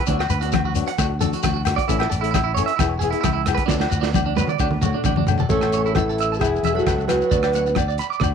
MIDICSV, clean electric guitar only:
0, 0, Header, 1, 3, 480
1, 0, Start_track
1, 0, Key_signature, 3, "major"
1, 0, Tempo, 451807
1, 88, Time_signature, 4, 2, 24, 8
1, 8866, End_track
2, 0, Start_track
2, 0, Title_t, "Clean electric guitar"
2, 0, Program_c, 0, 27
2, 74, Note_on_c, 0, 62, 77
2, 153, Note_off_c, 0, 62, 0
2, 204, Note_on_c, 0, 66, 67
2, 278, Note_off_c, 0, 66, 0
2, 318, Note_on_c, 0, 71, 69
2, 396, Note_off_c, 0, 71, 0
2, 436, Note_on_c, 0, 66, 87
2, 513, Note_off_c, 0, 66, 0
2, 557, Note_on_c, 0, 66, 67
2, 636, Note_off_c, 0, 66, 0
2, 694, Note_on_c, 0, 66, 72
2, 765, Note_off_c, 0, 66, 0
2, 931, Note_on_c, 0, 78, 78
2, 1004, Note_off_c, 0, 78, 0
2, 1047, Note_on_c, 0, 66, 64
2, 1123, Note_off_c, 0, 66, 0
2, 1283, Note_on_c, 0, 69, 76
2, 1360, Note_off_c, 0, 69, 0
2, 1417, Note_on_c, 0, 66, 63
2, 1488, Note_off_c, 0, 66, 0
2, 1521, Note_on_c, 0, 66, 73
2, 1599, Note_off_c, 0, 66, 0
2, 1632, Note_on_c, 0, 66, 62
2, 1710, Note_off_c, 0, 66, 0
2, 1873, Note_on_c, 0, 74, 82
2, 1951, Note_off_c, 0, 74, 0
2, 1997, Note_on_c, 0, 64, 79
2, 2076, Note_off_c, 0, 64, 0
2, 2114, Note_on_c, 0, 64, 69
2, 2191, Note_off_c, 0, 64, 0
2, 2227, Note_on_c, 0, 69, 73
2, 2309, Note_off_c, 0, 69, 0
2, 2348, Note_on_c, 0, 64, 83
2, 2427, Note_off_c, 0, 64, 0
2, 2454, Note_on_c, 0, 64, 70
2, 2540, Note_off_c, 0, 64, 0
2, 2589, Note_on_c, 0, 64, 73
2, 2668, Note_off_c, 0, 64, 0
2, 2703, Note_on_c, 0, 73, 89
2, 2786, Note_off_c, 0, 73, 0
2, 2826, Note_on_c, 0, 76, 78
2, 2905, Note_off_c, 0, 76, 0
2, 2936, Note_on_c, 0, 64, 65
2, 3021, Note_off_c, 0, 64, 0
2, 3178, Note_on_c, 0, 68, 69
2, 3262, Note_off_c, 0, 68, 0
2, 3299, Note_on_c, 0, 64, 64
2, 3381, Note_off_c, 0, 64, 0
2, 3408, Note_on_c, 0, 64, 79
2, 3495, Note_off_c, 0, 64, 0
2, 3538, Note_on_c, 0, 64, 70
2, 3620, Note_off_c, 0, 64, 0
2, 3767, Note_on_c, 0, 71, 88
2, 3852, Note_off_c, 0, 71, 0
2, 3887, Note_on_c, 0, 62, 87
2, 3974, Note_off_c, 0, 62, 0
2, 4027, Note_on_c, 0, 62, 75
2, 4106, Note_off_c, 0, 62, 0
2, 4140, Note_on_c, 0, 66, 68
2, 4223, Note_off_c, 0, 66, 0
2, 4262, Note_on_c, 0, 62, 89
2, 4342, Note_off_c, 0, 62, 0
2, 4388, Note_on_c, 0, 62, 65
2, 4469, Note_off_c, 0, 62, 0
2, 4524, Note_on_c, 0, 62, 68
2, 4597, Note_off_c, 0, 62, 0
2, 4639, Note_on_c, 0, 71, 90
2, 4716, Note_off_c, 0, 71, 0
2, 4771, Note_on_c, 0, 74, 71
2, 4842, Note_off_c, 0, 74, 0
2, 4887, Note_on_c, 0, 62, 65
2, 4962, Note_off_c, 0, 62, 0
2, 5127, Note_on_c, 0, 66, 70
2, 5202, Note_off_c, 0, 66, 0
2, 5251, Note_on_c, 0, 62, 67
2, 5322, Note_off_c, 0, 62, 0
2, 5372, Note_on_c, 0, 62, 78
2, 5445, Note_off_c, 0, 62, 0
2, 5496, Note_on_c, 0, 62, 66
2, 5566, Note_off_c, 0, 62, 0
2, 5736, Note_on_c, 0, 69, 83
2, 5806, Note_off_c, 0, 69, 0
2, 5861, Note_on_c, 0, 69, 75
2, 5931, Note_off_c, 0, 69, 0
2, 5975, Note_on_c, 0, 69, 62
2, 6045, Note_off_c, 0, 69, 0
2, 6094, Note_on_c, 0, 73, 69
2, 6167, Note_off_c, 0, 73, 0
2, 6224, Note_on_c, 0, 64, 82
2, 6291, Note_off_c, 0, 64, 0
2, 6339, Note_on_c, 0, 69, 59
2, 6410, Note_off_c, 0, 69, 0
2, 6474, Note_on_c, 0, 69, 63
2, 6538, Note_off_c, 0, 69, 0
2, 6592, Note_on_c, 0, 76, 84
2, 6659, Note_off_c, 0, 76, 0
2, 6715, Note_on_c, 0, 81, 67
2, 6779, Note_off_c, 0, 81, 0
2, 6823, Note_on_c, 0, 71, 60
2, 6893, Note_off_c, 0, 71, 0
2, 7062, Note_on_c, 0, 76, 65
2, 7132, Note_off_c, 0, 76, 0
2, 7183, Note_on_c, 0, 71, 57
2, 7251, Note_off_c, 0, 71, 0
2, 7305, Note_on_c, 0, 71, 69
2, 7374, Note_off_c, 0, 71, 0
2, 7768, Note_on_c, 0, 74, 69
2, 7842, Note_off_c, 0, 74, 0
2, 7892, Note_on_c, 0, 74, 64
2, 7963, Note_off_c, 0, 74, 0
2, 8023, Note_on_c, 0, 78, 65
2, 8093, Note_off_c, 0, 78, 0
2, 8262, Note_on_c, 0, 74, 59
2, 8332, Note_off_c, 0, 74, 0
2, 8374, Note_on_c, 0, 74, 68
2, 8445, Note_off_c, 0, 74, 0
2, 8492, Note_on_c, 0, 83, 82
2, 8565, Note_off_c, 0, 83, 0
2, 8607, Note_on_c, 0, 86, 66
2, 8680, Note_off_c, 0, 86, 0
2, 8725, Note_on_c, 0, 74, 64
2, 8801, Note_off_c, 0, 74, 0
2, 8866, End_track
3, 0, Start_track
3, 0, Title_t, "Muted clean electric guitar strokes"
3, 7422, Note_on_c, 9, 29, 57
3, 7528, Note_off_c, 9, 29, 0
3, 8156, Note_on_c, 9, 29, 78
3, 8262, Note_off_c, 9, 29, 0
3, 8866, End_track
0, 0, End_of_file